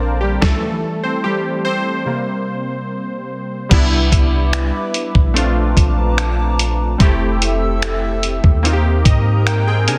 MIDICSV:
0, 0, Header, 1, 5, 480
1, 0, Start_track
1, 0, Key_signature, 0, "major"
1, 0, Tempo, 821918
1, 247, Time_signature, 4, 2, 24, 8
1, 5830, End_track
2, 0, Start_track
2, 0, Title_t, "Analog synth pad"
2, 0, Program_c, 0, 89
2, 0, Note_on_c, 0, 72, 73
2, 0, Note_on_c, 0, 77, 71
2, 0, Note_on_c, 0, 81, 68
2, 0, Note_on_c, 0, 86, 81
2, 231, Note_off_c, 0, 86, 0
2, 236, Note_off_c, 0, 81, 0
2, 237, Note_off_c, 0, 72, 0
2, 238, Note_off_c, 0, 77, 0
2, 2166, Note_on_c, 0, 86, 81
2, 2167, Note_on_c, 0, 71, 75
2, 2167, Note_on_c, 0, 83, 68
2, 2169, Note_on_c, 0, 76, 66
2, 3117, Note_off_c, 0, 86, 0
2, 3118, Note_off_c, 0, 76, 0
2, 3118, Note_off_c, 0, 83, 0
2, 3128, Note_on_c, 0, 81, 72
2, 3130, Note_on_c, 0, 82, 69
2, 3132, Note_on_c, 0, 86, 87
2, 4068, Note_off_c, 0, 71, 0
2, 4078, Note_off_c, 0, 81, 0
2, 4079, Note_off_c, 0, 82, 0
2, 4080, Note_off_c, 0, 86, 0
2, 4088, Note_on_c, 0, 76, 71
2, 4088, Note_on_c, 0, 88, 79
2, 4090, Note_on_c, 0, 69, 74
2, 5038, Note_off_c, 0, 76, 0
2, 5038, Note_off_c, 0, 88, 0
2, 5039, Note_off_c, 0, 69, 0
2, 5050, Note_on_c, 0, 82, 69
2, 5052, Note_on_c, 0, 70, 76
2, 5830, Note_off_c, 0, 70, 0
2, 5830, Note_off_c, 0, 82, 0
2, 5830, End_track
3, 0, Start_track
3, 0, Title_t, "Synth keys"
3, 0, Program_c, 1, 88
3, 0, Control_c, 1, 64, 127
3, 0, Note_on_c, 1, 50, 53
3, 0, Note_on_c, 1, 58, 66
3, 0, Note_on_c, 1, 60, 66
3, 0, Note_on_c, 1, 62, 70
3, 0, Note_on_c, 1, 69, 52
3, 0, Note_on_c, 1, 70, 85
3, 0, Note_on_c, 1, 72, 84
3, 0, Note_on_c, 1, 74, 86
3, 107, Note_off_c, 1, 58, 0
3, 121, Note_on_c, 1, 67, 74
3, 131, Note_on_c, 1, 55, 54
3, 140, Note_off_c, 1, 70, 0
3, 239, Note_off_c, 1, 55, 0
3, 242, Note_off_c, 1, 69, 0
3, 242, Note_on_c, 1, 52, 56
3, 242, Note_on_c, 1, 69, 84
3, 246, Note_on_c, 1, 55, 51
3, 248, Note_off_c, 1, 67, 0
3, 249, Note_on_c, 1, 57, 63
3, 250, Note_off_c, 1, 57, 0
3, 250, Note_on_c, 1, 57, 68
3, 255, Control_c, 1, 64, 0
3, 256, Note_off_c, 1, 60, 0
3, 256, Note_off_c, 1, 62, 0
3, 256, Note_off_c, 1, 72, 0
3, 258, Note_off_c, 1, 50, 0
3, 259, Note_off_c, 1, 74, 0
3, 372, Control_c, 1, 64, 127
3, 585, Note_off_c, 1, 57, 0
3, 604, Note_on_c, 1, 72, 76
3, 611, Note_on_c, 1, 60, 61
3, 615, Note_off_c, 1, 69, 0
3, 659, Note_off_c, 1, 72, 0
3, 664, Note_off_c, 1, 60, 0
3, 723, Note_on_c, 1, 67, 84
3, 725, Note_off_c, 1, 55, 0
3, 732, Note_on_c, 1, 55, 62
3, 948, Note_off_c, 1, 67, 0
3, 953, Note_off_c, 1, 55, 0
3, 962, Note_on_c, 1, 72, 79
3, 970, Note_on_c, 1, 60, 61
3, 1181, Note_off_c, 1, 52, 0
3, 1202, Note_on_c, 1, 48, 52
3, 1206, Note_on_c, 1, 55, 47
3, 1209, Note_on_c, 1, 58, 58
3, 1215, Control_c, 1, 64, 0
3, 1306, Control_c, 1, 64, 127
3, 1661, Note_off_c, 1, 72, 0
3, 1665, Note_off_c, 1, 60, 0
3, 2141, Note_off_c, 1, 48, 0
3, 2143, Note_off_c, 1, 55, 0
3, 2145, Note_off_c, 1, 58, 0
3, 2157, Note_on_c, 1, 55, 72
3, 2164, Note_on_c, 1, 59, 74
3, 2173, Note_on_c, 1, 62, 66
3, 2174, Control_c, 1, 64, 0
3, 2179, Note_on_c, 1, 64, 87
3, 2277, Control_c, 1, 64, 127
3, 3103, Note_off_c, 1, 55, 0
3, 3107, Note_off_c, 1, 59, 0
3, 3111, Note_off_c, 1, 62, 0
3, 3114, Note_off_c, 1, 64, 0
3, 3118, Note_on_c, 1, 57, 76
3, 3125, Note_on_c, 1, 60, 65
3, 3132, Note_on_c, 1, 62, 68
3, 3136, Control_c, 1, 64, 0
3, 3140, Note_on_c, 1, 65, 83
3, 3252, Control_c, 1, 64, 127
3, 4063, Note_off_c, 1, 57, 0
3, 4067, Note_off_c, 1, 60, 0
3, 4070, Note_off_c, 1, 62, 0
3, 4075, Note_off_c, 1, 65, 0
3, 4078, Note_on_c, 1, 55, 62
3, 4086, Note_on_c, 1, 60, 72
3, 4093, Note_on_c, 1, 64, 73
3, 4095, Control_c, 1, 64, 0
3, 4101, Note_on_c, 1, 67, 82
3, 4116, Note_on_c, 1, 57, 79
3, 4121, Note_off_c, 1, 55, 0
3, 4205, Control_c, 1, 64, 127
3, 5027, Note_off_c, 1, 60, 0
3, 5031, Note_off_c, 1, 64, 0
3, 5035, Note_off_c, 1, 67, 0
3, 5039, Note_on_c, 1, 58, 78
3, 5043, Note_off_c, 1, 57, 0
3, 5046, Note_on_c, 1, 60, 69
3, 5053, Note_on_c, 1, 63, 68
3, 5056, Control_c, 1, 64, 0
3, 5061, Note_on_c, 1, 65, 68
3, 5092, Note_off_c, 1, 65, 0
3, 5098, Note_on_c, 1, 67, 81
3, 5161, Control_c, 1, 64, 127
3, 5290, Note_on_c, 1, 75, 72
3, 5512, Note_off_c, 1, 75, 0
3, 5513, Note_off_c, 1, 58, 0
3, 5517, Note_off_c, 1, 60, 0
3, 5521, Note_off_c, 1, 63, 0
3, 5531, Note_on_c, 1, 79, 66
3, 5544, Note_off_c, 1, 67, 0
3, 5641, Note_off_c, 1, 79, 0
3, 5649, Note_on_c, 1, 68, 65
3, 5650, Note_on_c, 1, 79, 74
3, 5654, Note_on_c, 1, 60, 55
3, 5761, Note_off_c, 1, 79, 0
3, 5762, Note_off_c, 1, 68, 0
3, 5765, Note_off_c, 1, 60, 0
3, 5769, Note_on_c, 1, 70, 68
3, 5770, Note_on_c, 1, 80, 68
3, 5773, Note_on_c, 1, 62, 58
3, 5830, Note_off_c, 1, 62, 0
3, 5830, Note_off_c, 1, 70, 0
3, 5830, Note_off_c, 1, 80, 0
3, 5830, End_track
4, 0, Start_track
4, 0, Title_t, "808-style bass"
4, 0, Program_c, 2, 38
4, 0, Note_on_c, 2, 34, 105
4, 224, Note_off_c, 2, 34, 0
4, 2167, Note_on_c, 2, 36, 108
4, 2398, Note_off_c, 2, 36, 0
4, 2407, Note_on_c, 2, 36, 90
4, 2753, Note_off_c, 2, 36, 0
4, 3007, Note_on_c, 2, 34, 97
4, 3353, Note_off_c, 2, 34, 0
4, 3368, Note_on_c, 2, 34, 107
4, 4064, Note_off_c, 2, 34, 0
4, 4089, Note_on_c, 2, 29, 102
4, 4905, Note_off_c, 2, 29, 0
4, 4928, Note_on_c, 2, 39, 99
4, 5273, Note_off_c, 2, 39, 0
4, 5287, Note_on_c, 2, 44, 104
4, 5768, Note_on_c, 2, 48, 97
4, 5777, Note_off_c, 2, 44, 0
4, 5830, Note_off_c, 2, 48, 0
4, 5830, End_track
5, 0, Start_track
5, 0, Title_t, "Drums"
5, 246, Note_on_c, 9, 36, 102
5, 246, Note_on_c, 9, 38, 83
5, 304, Note_off_c, 9, 36, 0
5, 305, Note_off_c, 9, 38, 0
5, 2166, Note_on_c, 9, 49, 92
5, 2167, Note_on_c, 9, 36, 113
5, 2167, Note_on_c, 9, 42, 68
5, 2225, Note_off_c, 9, 36, 0
5, 2225, Note_off_c, 9, 42, 0
5, 2225, Note_off_c, 9, 49, 0
5, 2407, Note_on_c, 9, 36, 85
5, 2409, Note_on_c, 9, 42, 73
5, 2465, Note_off_c, 9, 36, 0
5, 2467, Note_off_c, 9, 42, 0
5, 2646, Note_on_c, 9, 42, 65
5, 2647, Note_on_c, 9, 26, 91
5, 2704, Note_off_c, 9, 42, 0
5, 2706, Note_off_c, 9, 26, 0
5, 2887, Note_on_c, 9, 42, 65
5, 2945, Note_off_c, 9, 42, 0
5, 3008, Note_on_c, 9, 36, 95
5, 3066, Note_off_c, 9, 36, 0
5, 3133, Note_on_c, 9, 42, 72
5, 3191, Note_off_c, 9, 42, 0
5, 3368, Note_on_c, 9, 36, 92
5, 3372, Note_on_c, 9, 42, 76
5, 3427, Note_off_c, 9, 36, 0
5, 3430, Note_off_c, 9, 42, 0
5, 3609, Note_on_c, 9, 26, 100
5, 3613, Note_on_c, 9, 42, 59
5, 3668, Note_off_c, 9, 26, 0
5, 3672, Note_off_c, 9, 42, 0
5, 3851, Note_on_c, 9, 42, 83
5, 3909, Note_off_c, 9, 42, 0
5, 4088, Note_on_c, 9, 36, 114
5, 4088, Note_on_c, 9, 42, 69
5, 4147, Note_off_c, 9, 36, 0
5, 4147, Note_off_c, 9, 42, 0
5, 4332, Note_on_c, 9, 42, 74
5, 4391, Note_off_c, 9, 42, 0
5, 4569, Note_on_c, 9, 42, 67
5, 4570, Note_on_c, 9, 26, 93
5, 4627, Note_off_c, 9, 42, 0
5, 4629, Note_off_c, 9, 26, 0
5, 4807, Note_on_c, 9, 42, 68
5, 4865, Note_off_c, 9, 42, 0
5, 4928, Note_on_c, 9, 36, 96
5, 4986, Note_off_c, 9, 36, 0
5, 5052, Note_on_c, 9, 42, 70
5, 5110, Note_off_c, 9, 42, 0
5, 5287, Note_on_c, 9, 36, 96
5, 5289, Note_on_c, 9, 42, 80
5, 5346, Note_off_c, 9, 36, 0
5, 5347, Note_off_c, 9, 42, 0
5, 5528, Note_on_c, 9, 26, 101
5, 5532, Note_on_c, 9, 42, 64
5, 5587, Note_off_c, 9, 26, 0
5, 5591, Note_off_c, 9, 42, 0
5, 5768, Note_on_c, 9, 42, 82
5, 5826, Note_off_c, 9, 42, 0
5, 5830, End_track
0, 0, End_of_file